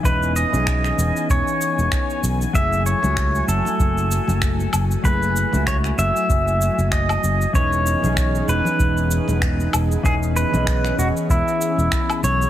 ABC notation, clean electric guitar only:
X:1
M:4/4
L:1/16
Q:"Swing 16ths" 1/4=96
K:F#dor
V:1 name="Clean electric guitar"
[E,CDB]3 [E,CDG]12- [E,CDG] | [F,A,EG]3 [F,A,EF]12- [F,A,EF] | [F,A,EG]3 [F,A,EF]12- [F,A,EF] | [E,CDB]3 [E,CDG]12- [E,CDG] |
[E,CDB]3 [E,CGd]12- [E,CGd] |]